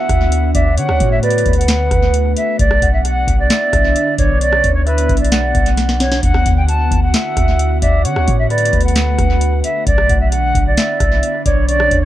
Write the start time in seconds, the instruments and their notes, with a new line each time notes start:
Already playing: ambient pad D3 B3 F#4, soft synth lead E5, flute F#5
0.09 808-style bass D2, kick, cross-stick, closed hi-hat
0.32 closed hi-hat
0.54 808-style bass D2, soft synth lead D5, flute E5, kick, closed hi-hat
0.77 808-style bass D3, ambient pad A3, soft synth lead C#5, flute F#5, closed hi-hat
0.89 808-style bass D2, cross-stick
1.00 808-style bass A2, kick, closed hi-hat
1.12 flute E5
1.23 soft synth lead B4, flute D5, closed hi-hat
1.30 closed hi-hat
1.38 closed hi-hat
1.46 808-style bass D2, kick, closed hi-hat
1.53 flute F#5, closed hi-hat
1.61 closed hi-hat
1.68 snare, clap, closed hi-hat
1.91 808-style bass D2, kick, cross-stick, closed hi-hat
2.14 closed hi-hat
2.37 flute E5, closed hi-hat
2.59 808-style bass B1, ambient pad D3 B3 D4, flute D5, kick, closed hi-hat
2.71 cross-stick
2.82 808-style bass B1, soft synth lead F#5, kick, closed hi-hat
2.93 flute E5
3.04 flute F#5, closed hi-hat
3.28 808-style bass B1, kick, closed hi-hat
3.40 flute D5
3.50 soft synth lead E5, snare, clap, closed hi-hat
3.73 808-style bass B1, kick, cross-stick, closed hi-hat
3.96 closed hi-hat
4.18 808-style bass B1, flute C#5, soft synth lead D5, kick, closed hi-hat
4.41 soft synth lead C#5, flute D5, closed hi-hat
4.53 cross-stick
4.64 808-style bass D2, kick, closed hi-hat
4.75 flute C#5
4.86 flute B4, soft synth lead E5, closed hi-hat
4.98 closed hi-hat
5.09 808-style bass B1, kick, closed hi-hat
5.17 flute D5, closed hi-hat
5.25 closed hi-hat
5.32 soft synth lead F#5, snare, clap, closed hi-hat
5.55 808-style bass B1, kick, closed hi-hat
5.66 closed hi-hat
5.77 snare, closed hi-hat
5.89 snare
6.00 flute C#5, snare, closed hi-hat
6.12 snare
6.23 808-style bass D2, ambient pad D3 F#4, flute F#5, kick, closed hi-hat
6.34 cross-stick
6.46 808-style bass D2, soft synth lead F#5, kick, closed hi-hat
6.57 flute G5
6.68 flute A5, closed hi-hat
6.91 808-style bass D2, kick, closed hi-hat
7.03 flute F#5
7.14 soft synth lead E5, snare, clap, closed hi-hat
7.37 808-style bass D2, kick, cross-stick, closed hi-hat
7.59 closed hi-hat
7.82 808-style bass D2, soft synth lead D5, flute E5, kick, closed hi-hat
8.05 808-style bass D3, ambient pad A3, soft synth lead C#5, flute F#5, closed hi-hat
8.16 808-style bass D2, cross-stick
8.28 808-style bass A2, kick, closed hi-hat
8.39 flute E5
8.50 soft synth lead B4, flute D5, closed hi-hat
8.58 closed hi-hat
8.65 closed hi-hat
8.73 808-style bass D2, kick, closed hi-hat
8.81 flute F#5, closed hi-hat
8.88 closed hi-hat
8.96 snare, clap, closed hi-hat
9.18 808-style bass D2, kick, cross-stick, closed hi-hat
9.41 closed hi-hat
9.64 flute E5, closed hi-hat
9.87 808-style bass B1, ambient pad D3 B3 D4, flute D5, kick, closed hi-hat
9.98 cross-stick
10.09 808-style bass B1, soft synth lead F#5, kick, closed hi-hat
10.21 flute E5
10.32 flute F#5, closed hi-hat
10.55 808-style bass B1, kick, closed hi-hat
10.67 flute D5
10.77 soft synth lead E5, snare, clap, closed hi-hat
11.00 808-style bass B1, kick, cross-stick, closed hi-hat
11.23 closed hi-hat
11.45 808-style bass B1, flute C#5, soft synth lead D5, kick, closed hi-hat
11.68 soft synth lead C#5, flute D5, closed hi-hat
11.80 cross-stick
11.91 808-style bass D2, kick, closed hi-hat